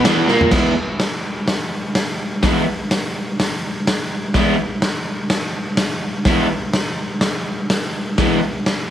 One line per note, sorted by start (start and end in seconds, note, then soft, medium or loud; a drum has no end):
0.04 0.28 E2 loud
0.04 0.28 E3 loud
0.04 snare loud
0.04 ride loud
0.28 0.51 A#2 medium
0.28 0.52 A#3 loud
0.28 snare medium
0.41 floor tom loud
0.51 0.71 E3 medium
0.51 0.71 G#3 medium
0.51 0.72 B3 medium
0.51 0.72 E4 loud
0.51 kick loud
0.51 snare loud
0.51 crash loud
1.00 snare loud
1.00 open hi-hat medium
1.48 snare loud
1.48 open hi-hat medium
1.95 snare loud
1.95 open hi-hat medium
2.43 2.63 E3 medium
2.43 2.63 G#3 medium
2.43 2.63 B3 medium
2.43 2.64 E4 medium
2.43 kick loud
2.43 snare loud
2.43 open hi-hat medium
2.91 snare loud
2.91 open hi-hat medium
3.40 snare loud
3.40 open hi-hat medium
3.87 snare loud
3.87 open hi-hat medium
4.34 4.55 E3 medium
4.34 4.55 G#3 medium
4.34 4.55 B3 loud
4.34 4.55 E4 loud
4.34 kick loud
4.34 snare loud
4.34 open hi-hat medium
4.82 snare loud
4.82 open hi-hat medium
5.30 snare loud
5.30 open hi-hat medium
5.77 snare loud
5.77 open hi-hat medium
6.25 6.46 E3 medium
6.25 6.46 G#3 medium
6.25 6.46 B3 medium
6.25 6.47 E4 loud
6.25 kick loud
6.25 snare loud
6.25 open hi-hat medium
6.74 snare loud
6.74 open hi-hat medium
7.21 snare loud
7.21 open hi-hat medium
7.70 snare loud
7.70 open hi-hat medium
8.18 8.38 E3 medium
8.18 8.38 G#3 medium
8.18 8.39 B3 medium
8.18 8.39 E4 medium
8.18 kick loud
8.18 snare loud
8.18 open hi-hat medium
8.66 snare loud
8.66 open hi-hat medium